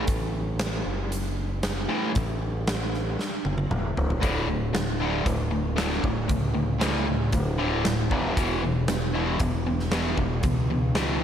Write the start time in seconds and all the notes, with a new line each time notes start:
Already playing: A1
0.08 kick, closed hi-hat
0.59 snare, closed hi-hat
0.86 F#1
1.12 closed hi-hat
1.63 snare, closed hi-hat
1.89 A2 E3 A3
2.15 A1, kick, closed hi-hat
2.67 snare, closed hi-hat
2.94 snare
3.19 snare
3.45 F#1, high tom
3.58 high tom
3.70 E1, mid tom
3.97 D1, floor tom
4.10 floor tom
4.21 D1 D2 A2 D3, kick, closed hi-hat
4.48 D2 A2
4.73 D2 A2, snare, closed hi-hat
5.00 D2 A2 D3
5.25 D1 D2 A2, kick, closed hi-hat
5.51 D2 A2
5.76 D2 A2 D3, snare, closed hi-hat
5.92 snare
6.03 D1 D2 A2, kick
6.28 C#2 D2 A2, kick, closed hi-hat
6.54 D2 A2
6.79 D2 A2 D3, snare, closed hi-hat
7.07 D2 A2
7.32 D1 D2 A2, kick, closed hi-hat
7.58 D2 A2 D3
7.84 D2 A2, snare, closed hi-hat
8.11 E1 E2 B2 E3, kick
8.36 E1 E2 B2 E3, kick, closed hi-hat
8.63 E2 B2
8.88 E2 B2, snare, closed hi-hat
9.14 E2 B2 E3
9.40 E1 E2 B2, kick, closed hi-hat
9.67 E2 B2
9.79 snare
9.91 E2 B2 E3, snare, closed hi-hat
10.18 E1 E2 B2, kick
10.43 C#2 E2 B2, kick, closed hi-hat
10.70 E2 B2
10.95 E2 B2 E3, snare, closed hi-hat